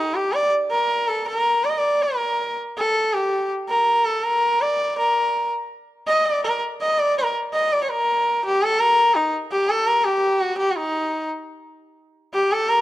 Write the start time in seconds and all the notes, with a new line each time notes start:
Already playing: D#4
0.15 G4
0.33 D5
0.70 A#4
1.08 A4
1.28 A#4
1.64 D5
1.70 D#5
1.78 D5
2.03 A#4
2.78 A4
3.13 G4
3.69 A#4
4.05 A4
4.23 A#4
4.61 D5
4.98 A#4
6.07 D#5
6.26 D5
6.44 A#4
6.81 D#5
6.99 D5
7.18 A#4
7.53 D#5
7.72 D5
7.83 C#5
7.90 A#4
8.45 G4
8.63 A4
8.80 A#4
9.16 D#4
9.51 G4
9.69 A4
9.87 A#4
10.04 G4
10.41 F#4
10.58 G4
10.70 F#4
10.76 D#4
12.34 G4
12.52 A4
12.69 A#4